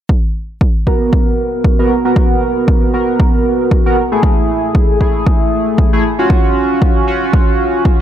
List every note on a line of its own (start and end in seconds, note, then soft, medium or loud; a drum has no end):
0.09 kick loud
0.61 kick loud
0.87 1.76 B3 medium
0.87 1.76 F#4 medium
0.87 1.76 A#4 medium
0.87 kick medium
1.13 kick loud
1.64 kick loud
1.79 1.93 B3 medium
1.79 1.93 F#4 medium
1.79 1.93 A#4 loud
2.05 2.91 B3 medium
2.05 2.91 F#4 medium
2.05 2.91 A#4 medium
2.16 kick loud
2.68 kick loud
2.93 3.82 B3 medium
2.93 3.83 F#4 medium
2.93 3.83 A#4 medium
3.20 kick loud
3.71 kick loud
3.86 3.96 B3 medium
3.86 3.96 F#4 medium
3.86 3.96 A#4 loud
4.12 4.98 A3 medium
4.12 4.98 E4 medium
4.12 4.98 G#4 medium
4.23 kick loud
4.75 kick loud
5.00 5.89 A3 medium
5.00 5.90 E4 medium
5.00 5.90 G#4 medium
5.00 kick medium
5.27 kick loud
5.78 kick loud
5.93 6.03 A3 medium
5.93 6.03 E4 medium
5.93 6.03 G#4 loud
6.19 7.05 C#4 medium
6.19 7.05 F4 medium
6.19 7.05 F#4 medium
6.30 kick loud
6.82 kick loud
7.07 7.96 C#4 medium
7.07 7.96 F4 medium
7.07 7.97 F#4 medium
7.33 kick loud
7.85 kick loud